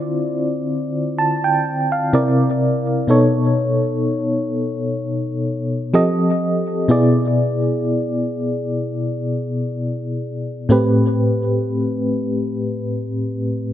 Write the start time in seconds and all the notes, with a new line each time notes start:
Already playing: D3 C4 E4 F4 C5 D5
1.18 A5
1.44 G5
1.92 F5
2.13 C3 C4 E4 A#4 D5
3.07 B2 B3 D#4 A4 C#5
5.94 F3 C4 G4 A4 D#5
6.88 B2 B3 E4 G#4 D5
10.69 A2 A3 C4 G4 B4